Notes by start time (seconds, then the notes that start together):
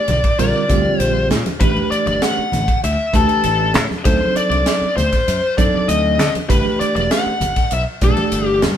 Already playing: D5
0.08 B1, snare, hi-hat pedal, ride, high conga, low conga
0.24 kick, ride
0.39 A#1 D3 G3 C4 F4 A#4 D5, hi-hat pedal, ride
0.68 D2 D3 G3 C4 F4 G4, kick, hi-hat pedal, ride
0.85 high conga
0.99 A#1 C5, hi-hat pedal, ride
1.30 A#2, snare, hi-hat pedal, ride, low conga
1.46 muted fingered electric bass stroke, snare, ride, high conga
1.60 A1 E3 A3 D4 G4 B4, kick, hi-hat pedal, ride, low conga
1.77 high conga
1.91 D5, muted fingered electric bass stroke, hi-hat pedal, ride
2.06 G1 D5, ride, high conga
2.22 F#5, snare, hi-hat pedal, ride
2.39 muted fingered electric bass stroke
2.52 A1, snare, hi-hat pedal, ride, high conga, low conga
2.68 kick, ride
2.84 D2 E5, hi-hat pedal, ride
3.13 D2 E3 A3 D4 G4 A4 B4, kick, snare, hi-hat pedal, ride
3.29 ride
3.44 A1, hi-hat pedal, ride
3.74 A2, snare, hi-hat pedal, ride, low conga
3.91 muted fingered electric bass stroke, snare, high conga
4.05 D2 F#3 C4 D4 D#4 A4 C5, kick, hi-hat pedal, ride, low conga
4.22 high conga
4.35 D5, muted fingered electric bass stroke, hi-hat pedal, ride
4.50 C2 D5, ride, high conga
4.66 snare, hi-hat pedal, ride
4.81 muted fingered electric bass stroke
4.96 D2 C5, snare, hi-hat pedal, ride, high conga, low conga
5.13 kick, snare, ride
5.28 F#2, hi-hat pedal, ride
5.58 F#2 F#3 C4 D4 D#4 A4 D5, kick, hi-hat pedal, ride
5.74 high conga
5.88 D2 D#5, hi-hat pedal, ride
6.19 D3, snare, hi-hat pedal, ride, low conga
6.35 muted fingered electric bass stroke, ride, high conga
6.49 G1 E3 A3 D4 G4 B4, kick, hi-hat pedal, ride, low conga
6.65 high conga
6.80 D5, muted fingered electric bass stroke, hi-hat pedal, ride
6.96 E1 D5, ride, high conga
7.11 F#5, snare, hi-hat pedal, ride
7.26 muted fingered electric bass stroke
7.40 G1, hi-hat pedal, ride, high conga, low conga
7.56 kick, snare, ride
7.71 B1 E5, hi-hat pedal, ride
8.01 B1 E3 A3 D4 G4 A4 D5, kick, snare, hi-hat pedal, ride
8.17 ride, high conga
8.32 G1, hi-hat pedal, ride
8.47 G4
8.62 G2, snare, hi-hat pedal, ride, low conga